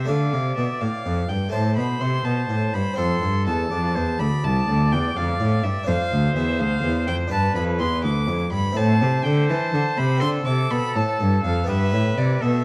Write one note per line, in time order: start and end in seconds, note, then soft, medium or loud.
0.00 0.11 C3 medium
0.05 0.30 A3 soft
0.05 1.48 D4 soft
0.05 1.49 A4 soft
0.05 1.24 D5 medium
0.05 0.56 F5 medium
0.09 0.31 D3 medium
0.09 0.35 D3 medium
0.33 0.57 C3 medium
0.33 0.55 C3 medium
0.57 0.65 B2 medium
0.57 0.79 B2 medium
0.57 0.82 E5 medium
0.81 0.89 A2 medium
0.81 1.03 A2 medium
0.81 1.30 F5 medium
1.06 1.27 F2 medium
1.06 1.29 F2 medium
1.29 1.51 G2 soft
1.29 1.53 G2 medium
1.29 1.51 G5 medium
1.49 2.92 A3 medium
1.49 2.93 E4 medium
1.49 2.94 C5 medium
1.49 1.76 A5 loud
1.54 1.75 A2 medium
1.54 1.79 A2 medium
1.76 1.99 B2 medium
1.76 2.01 B2 medium
1.76 2.02 B5 medium
2.01 2.23 C3 medium
2.01 2.25 C3 medium
2.01 2.26 C6 medium
2.24 2.47 B2 medium
2.24 2.49 B2 medium
2.24 2.75 A5 medium
2.49 2.72 A2 medium
2.49 2.73 A2 medium
2.73 2.82 G2 medium
2.73 2.96 G2 medium
2.73 2.98 B5 loud
2.94 3.19 C4 medium
2.94 5.83 F4 soft
2.94 3.69 A4 medium
2.94 5.83 C5 soft
2.98 3.20 F2 medium
2.98 3.22 F2 medium
2.98 3.46 C6 loud
3.22 3.44 G2 medium
3.22 3.49 G2 medium
3.47 3.69 E2 medium
3.47 3.71 E2 medium
3.47 4.21 A5 loud
3.70 3.93 F2 medium
3.70 3.98 F2 medium
3.70 3.97 D5 medium
3.95 4.18 E2 medium
3.95 4.20 E2 medium
3.95 4.19 C5 medium
4.19 4.42 D2 medium
4.19 4.28 D2 medium
4.19 5.85 D5 medium
4.19 4.45 B5 loud
4.44 4.66 C2 medium
4.44 4.68 C2 medium
4.44 4.94 A5 loud
4.69 4.94 D2 medium
4.69 4.91 D2 medium
4.92 5.16 E2 medium
4.92 5.14 E2 medium
4.92 5.18 G5 medium
5.16 5.40 F2 medium
5.16 5.38 F2 medium
5.16 5.65 F5 loud
5.40 5.62 A2 medium
5.40 5.63 A2 medium
5.64 5.72 G2 medium
5.64 5.86 G2 medium
5.64 5.87 E5 loud
5.83 7.25 D4 medium
5.83 7.26 F4 medium
5.83 7.27 C5 medium
5.83 7.33 C5 loud
5.88 5.96 F2 medium
5.88 6.10 F2 medium
5.88 6.35 F5 loud
6.12 6.33 D2 medium
6.12 6.35 D2 medium
6.36 6.61 E2 medium
6.36 6.57 E2 medium
6.36 6.60 E5 medium
6.59 6.83 D2 medium
6.59 6.81 D2 medium
6.59 7.07 F5 loud
6.83 7.09 E2 medium
6.83 7.05 E2 medium
7.07 7.31 F2 medium
7.07 7.29 F2 medium
7.07 7.15 G5 loud
7.27 7.76 D4 medium
7.27 8.71 F4 medium
7.27 8.71 B4 medium
7.27 8.48 B4 medium
7.31 7.53 G2 medium
7.31 7.55 G2 medium
7.31 7.55 A5 loud
7.55 7.77 F2 medium
7.55 7.81 F2 medium
7.55 7.63 B5 medium
7.79 8.01 E2 medium
7.79 8.05 E2 medium
7.79 8.03 C6 loud
8.03 8.25 D2 medium
8.03 8.30 D2 medium
8.03 8.51 D6 loud
8.27 8.49 F2 medium
8.27 8.52 F2 medium
8.52 8.74 G2 medium
8.52 8.76 G2 medium
8.52 8.78 B5 loud
8.72 10.15 C4 medium
8.72 10.16 E4 medium
8.72 10.17 A4 medium
8.76 8.98 A2 medium
8.76 9.03 A2 medium
8.76 10.21 C5 loud
8.76 9.26 A5 loud
9.01 9.24 C3 medium
9.01 9.23 C3 medium
9.24 9.51 D3 medium
9.24 9.47 D3 medium
9.24 9.48 G5 loud
9.49 9.73 E3 medium
9.49 9.71 E3 medium
9.49 9.99 A5 loud
9.73 9.81 D3 medium
9.73 9.95 D3 medium
9.97 10.19 C3 medium
9.97 10.23 C3 medium
9.97 10.20 B5 loud
10.18 11.63 C4 medium
10.18 11.64 F4 medium
10.18 11.68 A4 medium
10.18 11.64 A4 medium
10.18 10.29 C6 loud
10.22 10.45 D3 medium
10.22 10.44 D3 medium
10.46 10.70 C3 medium
10.46 10.68 C3 medium
10.46 10.72 D6 loud
10.71 10.79 B2 medium
10.71 10.93 B2 medium
10.71 10.98 B5 loud
10.95 11.03 A2 medium
10.95 11.17 A2 medium
10.95 11.43 A5 medium
11.20 11.44 G2 medium
11.20 11.42 G2 medium
11.44 11.68 F2 medium
11.44 11.67 F2 medium
11.44 11.68 F5 medium
11.64 11.90 B3 medium
11.64 12.64 F4 medium
11.64 12.64 G4 medium
11.68 11.91 G2 medium
11.68 11.95 G2 medium
11.68 12.43 B4 medium
11.68 12.19 E5 loud
11.93 12.17 A2 medium
11.93 12.16 A2 medium
12.18 12.42 C3 medium
12.18 12.40 C3 medium
12.18 12.43 D5 medium
12.41 12.64 B2 medium
12.41 12.64 A4 medium
12.41 12.64 E5 medium